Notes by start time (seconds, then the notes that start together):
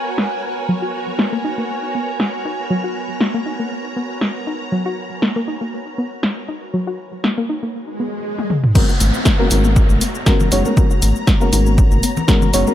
Already playing: B3 F#4 A#4 B4 C#5 G#5
0.18 snare
0.69 F#3 A#5
0.82 F#4
1.19 A#3, snare
1.33 A#3
1.44 D#4
1.58 A#3
1.95 B3
2.20 snare
2.45 D#4
2.70 F#3
2.84 F#4
3.21 A#3, snare
3.34 A#3
3.46 D#4
3.60 A#3
3.96 B3
4.21 snare
4.47 D#4
4.72 F#3
4.86 F#4
5.22 A#3, snare
5.36 A#3
5.48 D#4
5.61 A#3
5.98 B3
6.23 snare
6.48 D#4
6.74 F#3
6.87 F#4
7.24 A#3, snare
7.38 A#3
7.49 D#4
7.63 A#3
7.75 swell
8.00 B3
8.39 high tom
8.50 mid tom
8.64 mid tom
8.75 F#3 G#3 B3 C#4 F#4 A#4 C#5 A#5, kick, crash, downlifter, cabasa
8.89 F#4, cabasa
9.00 G#1, open hi-hat, high conga, cabasa
9.14 F#4, cabasa
9.25 A#3, kick, snare, cabasa
9.39 G#3 A#3 B3 C#4 F#4 A#4
9.50 G#1 G#3 B3 C#4 D#4 F#4 A#4 C#5, open hi-hat, high conga, cabasa
9.64 A#3, cabasa
9.76 kick, cabasa
9.89 G#1, high conga, cabasa
10.01 B3, open hi-hat, cabasa
10.15 A#5, cabasa
10.26 G#3 B3 C#4 F#4 A#4, kick, snare, high conga, cabasa
10.40 low conga, cabasa
10.51 F#1 G#3 B3 C#4 D#4 F#4 C#5, open hi-hat, cabasa
10.65 G#3 B3 C#4 F#4 A#4, high conga, cabasa
10.77 F#3 G#3 B3 C#4 F#4 A#4, kick, cabasa
10.91 F#4, cabasa
11.02 G#1, open hi-hat, high conga, cabasa
11.16 cabasa
11.27 A#3, kick, snare, cabasa
11.41 G#3 A#3 B3 C#4 F#4 A#4, cabasa
11.52 G#1 G#3 B3 C#4 D#4 F#4 A#4, open hi-hat, high conga, cabasa
11.66 A#3, cabasa
11.78 kick, cabasa
11.91 G#1, high conga, cabasa
12.03 B3, open hi-hat, cabasa
12.17 low conga, cabasa
12.28 G#3 B3 C#4 F#4 A#4, kick, snare, high conga, cabasa
12.42 low conga, cabasa
12.53 F#1 G#3 B3 C#4 D#4 F#4 C#5, open hi-hat, cabasa
12.67 G#3 B3 C#4 F#4 A#4, high conga, cabasa